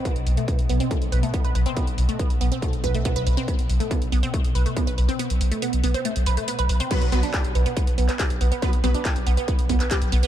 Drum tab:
CC |----------------|----------------|----------------|----------------|
HH |xxoxxxoxxxoxxxox|xxoxxxoxxxoxxxox|xxoxxxoxxxoxxxox|xxoxxxoxxxoxxxox|
CP |----------------|----------------|----------------|----------------|
BD |o---o---o---o---|o---o---o-o-o---|o---o---o---o---|----------------|

CC |x---------------|----------------|
HH |xxoxxxoxxxoxxxox|xxoxxxoxxxoxxxox|
CP |----x------xx---|----x------xx---|
BD |o---o---o---o---|o---o---o-o-o---|